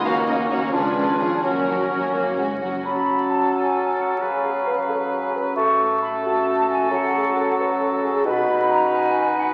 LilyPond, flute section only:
\new Staff \with { instrumentName = "Flute section" } { \time 6/8 \key fis \major \tempo 4. = 88 r2. | r2. | \key fis \minor b''4 a''8 gis''4 fis''8 | eis''2~ eis''8 r8 |
cis'''4 b''8 a''4 gis''8 | fis''2~ fis''8 r8 | \key ces \lydian b''4 bes''8 aes''4 fis''8 | }